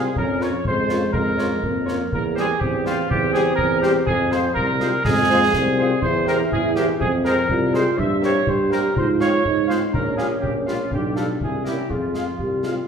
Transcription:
Already playing: euphonium C4, trumpet section G#4
0.16 tuba F2, euphonium C#4, trumpet section A#4, concert bass drum
0.40 french horn section A#3 C#4 F4, woodwind section F4 C#5, trumpet section C#5, snare
0.65 tuba F2, euphonium G#3, trumpet section C5, concert bass drum
0.87 french horn section A#3 C#4 F4, woodwind section F4 C#5, snare
1.12 tuba F2, trumpet section A#4, concert bass drum
1.37 french horn section A#3 C#4 F4, woodwind section F4 C#5, snare
1.63 tuba F2, euphonium A#3, concert bass drum
1.85 french horn section A#3 C#4 F4, woodwind section F4 C#5, snare
2.12 tuba E2, trumpet section A#4, concert bass drum
2.34 french horn section G3 C4 G4, woodwind section G4 C5, trumpet section G#4, snare
2.59 tuba E2, euphonium C4, trumpet section G4, concert bass drum
2.85 french horn section G3 C4 G4, trumpet section F4, woodwind section G4 C5, snare
3.09 tuba E2, euphonium C4, trumpet section G4, concert bass drum
3.33 french horn section G3 C4 G4, woodwind section G4 C5, trumpet section G#4, snare
3.56 tuba E2, trumpet section A#4, concert bass drum
3.80 french horn section G3 C4 G4, trumpet section G4, woodwind section G4 C5, snare
4.05 tuba F2, trumpet section G#4, concert bass drum
4.30 french horn section G#3 C4 F4, woodwind section G#4 C5, trumpet section C5, snare
4.54 tuba C2, trumpet section A#4, concert bass drum
4.80 french horn section G#3 C4 F4, woodwind section G#4 C5, snare
5.05 tuba F2, euphonium G#3, trumpet section G#4, concert bass drum, snare
5.29 french horn section G#3 C4 F4, woodwind section G#4 C5
5.53 tuba C2, euphonium C4, concert bass drum, snare
5.77 french horn section G#3 C4 F4, woodwind section G#4 C5
6.01 tuba E2, euphonium E4, trumpet section C5, concert bass drum
6.26 french horn section A#3 C4 G4, trumpet section A#4, woodwind section A#4 C5, snare
6.51 tuba E2, trumpet section G#4, concert bass drum
6.75 french horn section A#3 C4 G4, trumpet section G4, woodwind section A#4 C5, snare
6.99 tuba F2, euphonium C4, trumpet section G#4, concert bass drum
7.25 french horn section G#3 C4 G#4, woodwind section G#4 C5, trumpet section A#4, snare
7.48 tuba C2, euphonium F4, concert bass drum
7.73 french horn section G#3 C4 G#4, woodwind section G#4 C5, trumpet section C5, snare
7.98 tuba G2, euphonium E4, trumpet section E5, concert bass drum
8.21 french horn section A#3 C4 G4, woodwind section A#4 C5, trumpet section C#5, snare
8.46 tuba G2, euphonium G4, trumpet section C5, concert bass drum
8.70 french horn section A#3 C4 G4, woodwind section A#4 C5, trumpet section A#4, snare
8.96 tuba G#2, euphonium F4, trumpet section C5, concert bass drum
9.19 french horn section G#3 C4 F4, woodwind section G#4 F5, trumpet section C#5, snare
9.44 tuba G#2, euphonium D#4, concert bass drum
9.67 french horn section G#3 C4 F4, woodwind section G#4 F5, trumpet section C5, snare
9.93 tuba A#1, euphonium C#4, trumpet section A#4, concert bass drum
10.16 french horn section G3 C#4 F4, woodwind section G4 F5, trumpet section G#4, snare
10.41 tuba A#1, trumpet section G4, concert bass drum
10.66 french horn section G3 C#4 F4, trumpet section F4, woodwind section G4 F5, snare
10.91 tuba B1, euphonium D4, trumpet section G4, concert bass drum
11.15 french horn section G3 D4 F4, woodwind section G4 F5, trumpet section A4, snare
11.41 tuba C2, euphonium E4, trumpet section G#4, concert bass drum
11.64 french horn section A#3 C#4 E4, trumpet section G4, woodwind section A#4 E5, snare
11.89 tuba F2, trumpet section F4, euphonium G#4, concert bass drum
12.14 french horn section G#3 C4 F4, woodwind section G#4 F5, snare
12.39 tuba C2, euphonium G4, concert bass drum
12.63 french horn section G#3 C4 F4, euphonium F4, woodwind section G#4 F5, snare

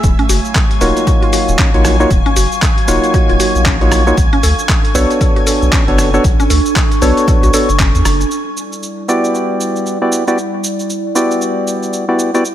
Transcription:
0.04 analog synth bass D#1, ambient pad F#3 F5 C#6, string machine G#5 G#6, kick, closed hi-hat, shaker
0.19 synth arpeggio sound C#4, closed hi-hat
0.29 analog synth bass F#1, synth arpeggio sound F#4, open hi-hat, shaker
0.45 shaker
0.55 kick, clap, closed hi-hat, shaker
0.71 closed hi-hat
0.81 analog synth bass D#1, synth stab A#3 D#4 F4 F#4 C#5, synth arpeggio sound A#4, open hi-hat, shaker
0.97 closed hi-hat, shaker
1.07 synth arpeggio sound F#4, kick, closed hi-hat, shaker
1.22 synth arpeggio sound F4, closed hi-hat
1.33 synth arpeggio sound F#4, open hi-hat, shaker
1.48 analog synth bass D#1, shaker
1.59 synth arpeggio sound C#4, kick, clap, closed hi-hat, shaker
1.74 analog synth bass A#1, synth stab A#3 D#4 F4 F#4 C#5, closed hi-hat
1.85 cross-stick, open hi-hat, shaker
2.00 synth stab A#3 D#4 F4 F#4 C#5, shaker
2.10 analog synth bass D#1, kick, closed hi-hat, shaker
2.26 synth arpeggio sound C#4, closed hi-hat
2.36 analog synth bass F#1, synth arpeggio sound F#4, open hi-hat, shaker
2.52 shaker
2.62 kick, clap, closed hi-hat, shaker
2.78 closed hi-hat
2.88 analog synth bass D#1, synth stab A#3 D#4 F4 F#4 C#5, synth arpeggio sound A#4, open hi-hat, shaker
3.04 closed hi-hat, shaker
3.14 synth arpeggio sound F#4, kick, closed hi-hat, shaker
3.29 analog synth bass D#1, synth arpeggio sound F4, closed hi-hat
3.40 synth arpeggio sound F#4, open hi-hat, shaker
3.55 analog synth bass A#1, shaker
3.66 synth arpeggio sound C#4, kick, clap, closed hi-hat, shaker
3.81 synth stab A#3 D#4 F4 F#4 C#5, closed hi-hat
3.92 cross-stick, open hi-hat, shaker
4.07 synth stab A#3 D#4 F4 F#4 C#5, shaker
4.17 analog synth bass B1, ambient pad D4 A4, kick, closed hi-hat, shaker
4.33 synth arpeggio sound C#4, closed hi-hat
4.43 analog synth bass D2, synth arpeggio sound A4, open hi-hat, shaker
4.59 shaker
4.69 kick, clap, closed hi-hat, shaker
4.85 closed hi-hat
4.95 analog synth bass B1, synth stab B3 D4 F#4 A4 C#5, synth arpeggio sound B4, open hi-hat, shaker
5.11 closed hi-hat, shaker
5.21 synth arpeggio sound A4, kick, closed hi-hat, shaker
5.36 synth arpeggio sound F#4, closed hi-hat
5.47 synth arpeggio sound A4, open hi-hat, shaker
5.62 analog synth bass B1, shaker
5.73 synth arpeggio sound C#4, kick, clap, closed hi-hat, shaker
5.88 analog synth bass F#1, synth stab B3 D4 F#4 A4 C#5, closed hi-hat
5.98 cross-stick, open hi-hat, shaker
6.14 synth stab B3 D4 F#4 A4 C#5, shaker
6.24 analog synth bass B1, ambient pad C#6, kick, closed hi-hat, shaker
6.40 synth arpeggio sound C#4, closed hi-hat, shaker
6.50 analog synth bass D2, synth arpeggio sound A4, open hi-hat, shaker
6.66 shaker
6.76 kick, clap, closed hi-hat, shaker
6.92 closed hi-hat, shaker
7.02 analog synth bass B1, synth stab B3 D4 F#4 A4 C#5, synth arpeggio sound B4, open hi-hat, shaker
7.17 closed hi-hat, shaker
7.28 synth arpeggio sound A4, kick, closed hi-hat, shaker
7.43 analog synth bass B1, synth arpeggio sound F#4, closed hi-hat, shaker
7.53 synth stab B3 D4 F#4 A4 C#5, synth arpeggio sound A4, open hi-hat, shaker
7.69 analog synth bass F#1, closed hi-hat, shaker
7.79 synth arpeggio sound C#4, kick, clap, closed hi-hat, shaker
7.95 analog synth bass E2, closed hi-hat, shaker
8.05 analog synth bass F#1, cross-stick, open hi-hat, shaker
8.21 closed hi-hat, shaker
8.31 ambient pad G3 E4 D5 F#5, shaker
8.57 shaker
8.72 shaker
8.83 shaker
9.08 synth stab B3 E4 F#4 G4 D5, shaker
9.24 shaker
9.35 shaker
9.61 shaker
9.76 shaker
9.86 shaker
10.02 synth stab B3 E4 F#4 G4 D5
10.12 shaker
10.27 synth stab B3 E4 F#4 G4 D5, shaker
10.38 shaker
10.64 shaker
10.79 shaker
10.90 shaker
11.15 synth stab B3 E4 F#4 G4 D5, shaker
11.31 shaker
11.41 shaker
11.67 shaker
11.83 shaker
11.93 shaker
12.08 synth stab B3 E4 F#4 G4 D5
12.19 shaker
12.34 synth stab B3 E4 F#4 G4 D5, shaker
12.45 ambient pad A3 G#4, shaker

